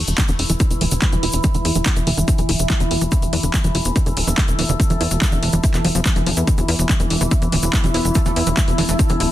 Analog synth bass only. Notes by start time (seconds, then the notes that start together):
0.08 E1
0.29 E1
0.39 E1
0.50 E1
0.71 E1
0.81 D1
0.92 E1
1.13 E1
1.23 E1
1.34 E1
1.54 E1
1.65 E2
1.75 E1
1.96 E1
2.07 E1
2.17 E1
2.38 E1
2.49 D1
2.59 E1
2.80 E1
2.91 E1
3.01 E1
3.22 E1
3.33 E2
3.43 E1
3.64 E1
3.75 E1
3.85 E1
4.06 E1
4.17 D1
4.27 E1
4.48 E1
4.59 E1
4.69 E1
4.90 E1
5.01 E2
5.11 E1
5.32 E1
5.43 E1
5.53 E1
5.74 E1
5.84 E1
5.95 E1
6.16 E1
6.26 F1
6.37 E2
6.58 E1
6.68 E2
6.79 E1
7.00 E1
7.10 E1
7.21 E1
7.42 E1
7.52 D1
7.63 E1
7.84 E1
7.94 E1
8.05 E1
8.26 E1
8.36 E2
8.47 E1
8.68 E1
8.78 E1
8.89 E1
9.10 E1
9.20 D1